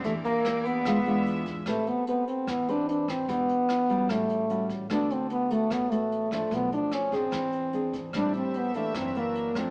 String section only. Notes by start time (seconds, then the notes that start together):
0.03 A#3 E4 G4 D5
0.85 D4 F4 G#4 E5
8.14 C4 G4 A4 E5
8.95 D4 F#4 A#4